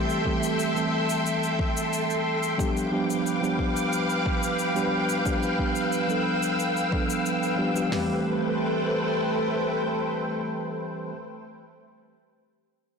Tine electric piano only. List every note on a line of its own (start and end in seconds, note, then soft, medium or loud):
0.00 0.21 E3 medium
0.00 0.21 G3 medium
0.00 0.21 A3 medium
0.00 0.21 C4 medium
0.00 0.21 G4 medium
0.25 0.71 E3 medium
0.25 0.71 G3 medium
0.25 0.71 A3 medium
0.25 0.72 C4 medium
0.25 0.72 G4 medium
0.74 2.54 E3 medium
0.74 2.55 G3 medium
0.74 2.55 A3 medium
0.74 2.55 C4 medium
0.74 2.56 A4 medium
2.58 2.88 F3 medium
2.58 2.88 G3 medium
2.58 2.88 B3 medium
2.58 2.88 D4 medium
2.58 2.88 G4 medium
2.91 3.38 F3 medium
2.91 3.38 G3 medium
2.91 3.38 B3 medium
2.91 3.38 D4 medium
2.91 3.38 G4 medium
3.41 4.71 F3 medium
3.41 4.71 G3 medium
3.41 4.71 B3 medium
3.41 4.72 D4 medium
3.41 4.72 G4 medium
4.74 5.21 F3 medium
4.74 5.21 G3 medium
4.74 5.21 B3 medium
4.74 5.21 D4 medium
4.74 5.22 G4 medium
5.25 5.54 F3 medium
5.25 5.55 G3 medium
5.25 5.55 B3 medium
5.25 5.55 D4 medium
5.25 5.55 G4 medium
5.58 6.04 F3 medium
5.58 6.05 G3 medium
5.58 6.05 B3 medium
5.58 6.05 D4 medium
5.58 6.05 G4 medium
6.07 6.88 F3 medium
6.07 6.88 G3 medium
6.07 6.89 B3 medium
6.07 6.89 D4 medium
6.07 6.89 A4 medium
6.91 7.54 F3 medium
6.91 7.54 G3 medium
6.91 7.55 B3 medium
6.91 7.55 D4 medium
6.91 7.55 A4 medium
7.56 7.70 F3 medium
7.56 7.71 G3 medium
7.56 7.71 B3 medium
7.56 7.71 D4 medium
7.56 7.71 G4 medium
7.74 7.87 F3 medium
7.74 7.88 G3 medium
7.74 7.88 B3 medium
7.74 7.88 D4 medium
7.74 7.88 G4 medium
7.89 11.11 E3 medium
7.89 11.12 G3 medium
7.89 11.13 A3 medium
7.89 11.14 C4 medium
7.93 11.15 G4 medium